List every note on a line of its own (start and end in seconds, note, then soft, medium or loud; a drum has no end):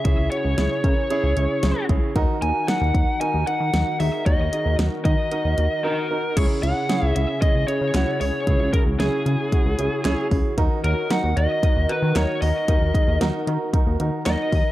0.00 2.11 C#3 medium
0.00 2.11 C#4 medium
0.00 2.12 E4 medium
0.00 2.11 G#4 medium
0.05 0.15 C#2 loud
0.05 0.26 C#4 loud
0.05 0.26 E4 medium
0.05 0.26 G#4 loud
0.05 0.31 E5 loud
0.05 kick loud
0.05 closed hi-hat medium
0.18 0.29 C#2 loud
0.31 0.52 C#4 medium
0.31 0.52 E4 medium
0.31 0.52 F#4 medium
0.31 1.85 C#5 medium
0.31 closed hi-hat medium
0.45 0.55 C#2 loud
0.58 0.68 C#2 loud
0.58 0.78 C#4 medium
0.58 0.78 E4 medium
0.58 0.78 G#4 medium
0.58 snare loud
0.58 closed hi-hat medium
0.84 0.94 C#3 loud
0.84 1.05 C#4 medium
0.84 1.05 E4 medium
0.84 1.05 A#4 medium
0.84 kick medium
0.84 closed hi-hat medium
1.10 1.31 C#4 loud
1.10 1.31 E4 loud
1.10 1.31 G#4 loud
1.10 closed hi-hat medium
1.24 1.34 C#2 medium
1.37 1.47 C#2 medium
1.37 1.57 C#4 medium
1.37 1.57 E4 medium
1.37 1.57 G#4 medium
1.37 closed hi-hat medium
1.63 1.73 C#2 loud
1.63 1.84 C#4 medium
1.63 1.84 E4 medium
1.63 1.84 G#4 loud
1.63 snare loud
1.63 closed hi-hat medium
1.89 2.00 C#2 loud
1.89 2.10 C#4 medium
1.89 2.10 E4 medium
1.89 2.10 G#4 loud
1.89 kick medium
1.89 closed hi-hat medium
2.16 2.26 D#2 loud
2.16 6.33 D#3 medium
2.16 2.36 D#4 loud
2.16 6.33 D#4 medium
2.16 6.33 F#4 medium
2.16 2.36 F#4 loud
2.16 6.33 A#4 medium
2.16 2.36 A#4 loud
2.16 kick loud
2.16 closed hi-hat medium
2.42 2.52 D#2 loud
2.42 2.63 D#4 medium
2.42 2.63 F#4 medium
2.42 2.63 A#4 medium
2.42 2.68 G#5 loud
2.42 closed hi-hat medium
2.68 2.89 D#4 medium
2.68 2.89 F#4 medium
2.68 2.89 A#4 medium
2.68 3.20 F#5 loud
2.68 snare loud
2.68 closed hi-hat medium
2.81 2.92 D#2 medium
2.94 3.05 D#2 loud
2.94 3.15 D#4 medium
2.94 3.15 F#4 medium
2.94 3.15 A#4 medium
2.94 kick loud
2.94 closed hi-hat medium
3.21 3.42 D#4 loud
3.21 3.42 F#4 medium
3.21 3.42 A#4 loud
3.21 3.47 G#5 loud
3.21 closed hi-hat medium
3.34 3.44 D#2 loud
3.47 3.68 D#4 medium
3.47 3.68 F#4 medium
3.47 3.68 A#4 medium
3.47 3.96 F#5 loud
3.47 closed hi-hat medium
3.60 3.71 D#3 loud
3.73 3.84 D#2 loud
3.73 3.94 D#4 medium
3.73 3.94 F#4 medium
3.73 3.94 A#4 medium
3.73 snare loud
3.73 closed hi-hat medium
4.00 4.10 D#2 loud
4.00 4.21 D#4 medium
4.00 4.21 F#4 medium
4.00 4.21 G#4 medium
4.00 4.26 E5 medium
4.00 open hi-hat medium
4.26 4.36 D#2 loud
4.26 4.47 D#4 loud
4.26 4.47 F#4 medium
4.26 4.47 C#5 loud
4.26 4.75 D#5 medium
4.26 kick loud
4.26 closed hi-hat medium
4.39 4.50 D#2 loud
4.52 4.73 D#4 medium
4.52 4.73 F#4 medium
4.52 4.73 G#4 medium
4.52 closed hi-hat medium
4.66 4.76 D#2 loud
4.79 4.89 D#2 medium
4.79 5.00 D#4 medium
4.79 5.00 F#4 medium
4.79 5.00 A#4 medium
4.79 snare loud
4.79 closed hi-hat medium
5.05 5.15 D#3 loud
5.05 5.26 D#4 medium
5.05 5.26 F#4 medium
5.05 5.26 A#4 medium
5.05 6.06 D#5 loud
5.05 kick loud
5.05 closed hi-hat medium
5.31 5.52 D#4 loud
5.31 5.52 F#4 medium
5.31 5.52 A#4 loud
5.31 closed hi-hat medium
5.45 5.55 D#2 loud
5.58 5.68 D#2 loud
5.58 5.79 D#4 medium
5.58 5.79 F#4 medium
5.58 5.79 A#4 medium
5.58 closed hi-hat medium
5.84 6.05 D#4 loud
5.84 6.05 F#4 medium
5.84 6.38 A#4 medium
5.84 6.05 A#4 loud
6.11 6.31 D#4 medium
6.11 6.31 F#4 medium
6.11 6.31 A#4 loud
6.37 6.47 C#2 loud
6.37 10.54 C#3 medium
6.37 6.57 C#4 loud
6.37 10.54 C#4 medium
6.37 6.58 E4 medium
6.37 10.54 E4 medium
6.37 8.45 G#4 medium
6.37 6.58 G#4 loud
6.37 6.44 C#5 loud
6.37 kick loud
6.37 closed hi-hat medium
6.37 crash loud
6.63 6.73 C#2 loud
6.63 6.84 C#4 medium
6.63 6.84 E4 medium
6.63 6.84 G#4 medium
6.63 7.06 F#5 loud
6.63 closed hi-hat medium
6.89 7.10 C#4 loud
6.89 7.10 E4 medium
6.89 7.10 G#4 loud
6.89 snare loud
6.89 closed hi-hat medium
7.02 7.13 C#2 medium
7.02 7.15 E5 loud
7.15 7.26 C#2 medium
7.15 7.36 C#4 medium
7.15 7.36 E4 medium
7.15 7.36 G#4 medium
7.15 7.41 E5 loud
7.15 closed hi-hat medium
7.42 7.63 C#4 medium
7.42 7.63 E4 medium
7.42 7.63 G#4 medium
7.42 7.67 D#5 loud
7.42 kick medium
7.42 closed hi-hat medium
7.55 7.65 C#2 medium
7.68 7.89 C#4 medium
7.68 7.89 E4 medium
7.68 7.89 G#4 medium
7.68 8.19 C#5 loud
7.68 closed hi-hat medium
7.81 7.92 C#3 medium
7.94 8.05 C#2 loud
7.94 8.15 C#4 loud
7.94 8.15 E4 medium
7.94 8.15 F#4 loud
7.94 snare loud
7.94 clap loud
7.94 closed hi-hat medium
8.20 8.31 C#2 loud
8.20 8.42 C#4 medium
8.20 8.42 E4 medium
8.20 8.42 G#4 medium
8.20 8.70 C#5 loud
8.20 open hi-hat medium
8.47 8.57 C#2 loud
8.47 8.68 C#4 loud
8.47 8.68 E4 medium
8.47 14.72 F#4 medium
8.47 8.68 G#4 loud
8.47 kick loud
8.47 closed hi-hat medium
8.60 8.70 C#2 loud
8.73 8.94 C#4 medium
8.73 8.94 E4 medium
8.73 8.94 G#4 medium
8.73 8.80 A#4 medium
8.73 kick loud
8.73 closed hi-hat medium
8.87 8.97 C#2 medium
9.00 9.10 C#2 loud
9.00 9.21 C#4 loud
9.00 9.21 E4 medium
9.00 10.27 G#4 medium
9.00 9.21 G#4 loud
9.00 snare loud
9.00 closed hi-hat medium
9.26 9.36 C#3 loud
9.26 9.47 C#4 medium
9.26 9.47 E4 medium
9.26 9.47 G#4 medium
9.26 closed hi-hat medium
9.52 9.73 C#4 medium
9.52 9.73 E4 medium
9.52 9.73 F#4 medium
9.52 kick loud
9.52 closed hi-hat medium
9.66 9.76 C#2 loud
9.79 9.89 C#2 medium
9.79 10.00 C#4 medium
9.79 10.00 E4 medium
9.79 10.00 G#4 loud
9.79 closed hi-hat medium
10.05 10.15 C#2 loud
10.05 10.26 C#4 loud
10.05 10.26 E4 loud
10.05 10.26 G#4 loud
10.05 snare loud
10.05 clap medium
10.05 closed hi-hat medium
10.31 10.42 C#2 loud
10.31 10.52 C#4 medium
10.31 10.52 E4 medium
10.31 10.52 G#4 loud
10.31 kick medium
10.31 open hi-hat medium
10.58 10.68 D#2 loud
10.58 14.72 D#3 medium
10.58 10.79 D#4 loud
10.58 14.72 D#4 medium
10.58 10.78 F#4 loud
10.58 10.78 A#4 loud
10.58 14.72 A#4 medium
10.58 kick loud
10.58 closed hi-hat medium
10.84 10.94 D#2 loud
10.84 11.05 D#4 medium
10.84 11.05 F#4 medium
10.84 11.11 A#4 medium
10.84 11.05 C#5 medium
10.84 closed hi-hat medium
11.10 11.31 D#4 loud
11.10 11.31 F#4 medium
11.10 11.31 A#4 loud
11.10 11.38 F#5 loud
11.10 snare loud
11.10 closed hi-hat medium
11.24 11.34 D#2 loud
11.37 11.47 D#2 loud
11.37 11.57 D#4 medium
11.37 11.58 F#4 medium
11.37 11.57 A#4 medium
11.37 11.91 D#5 loud
11.37 closed hi-hat medium
11.63 11.84 D#4 medium
11.63 11.84 F#4 medium
11.63 11.84 A#4 medium
11.63 kick loud
11.63 closed hi-hat medium
11.76 11.86 D#2 loud
11.89 12.10 D#4 medium
11.89 12.10 F#4 medium
11.89 12.10 A#4 medium
11.89 12.16 B4 medium
11.89 closed hi-hat medium
12.02 12.13 D#3 loud
12.16 12.26 D#2 loud
12.16 12.36 D#4 loud
12.16 12.36 F#4 medium
12.16 12.36 A#4 loud
12.16 12.41 C#5 medium
12.16 snare loud
12.16 clap loud
12.16 closed hi-hat medium
12.42 12.52 D#2 loud
12.42 12.63 D#4 medium
12.42 12.63 F#4 medium
12.42 12.63 A#4 medium
12.42 13.17 D#5 medium
12.42 open hi-hat medium
12.68 12.79 D#2 loud
12.68 12.89 D#4 loud
12.68 12.89 F#4 medium
12.68 12.89 A#4 loud
12.68 kick loud
12.68 closed hi-hat medium
12.81 12.92 D#2 loud
12.94 13.15 D#4 medium
12.94 13.15 F#4 medium
12.94 13.15 G#4 medium
12.94 kick loud
12.94 closed hi-hat medium
13.08 13.18 D#2 loud
13.21 13.31 D#2 medium
13.21 13.42 D#4 loud
13.21 13.42 F#4 loud
13.21 13.42 A#4 loud
13.21 snare loud
13.21 closed hi-hat medium
13.47 13.57 D#3 loud
13.47 13.68 D#4 medium
13.47 13.68 F#4 medium
13.47 13.68 A#4 medium
13.47 closed hi-hat medium
13.73 13.94 D#4 medium
13.73 13.94 F#4 medium
13.73 13.94 A#4 loud
13.73 kick loud
13.73 closed hi-hat medium
13.87 13.97 D#2 loud
14.00 14.10 D#2 loud
14.00 14.21 D#4 medium
14.00 14.21 F#4 medium
14.00 14.21 A#4 medium
14.00 closed hi-hat medium
14.26 14.36 D#2 loud
14.26 14.47 D#4 loud
14.26 14.47 F#4 medium
14.26 14.47 A#4 loud
14.26 14.72 D#5 medium
14.26 snare loud
14.26 clap medium
14.26 closed hi-hat medium
14.52 14.63 D#2 loud
14.52 14.72 D#4 medium
14.52 14.72 F#4 medium
14.52 14.72 A#4 medium
14.52 kick medium
14.52 open hi-hat medium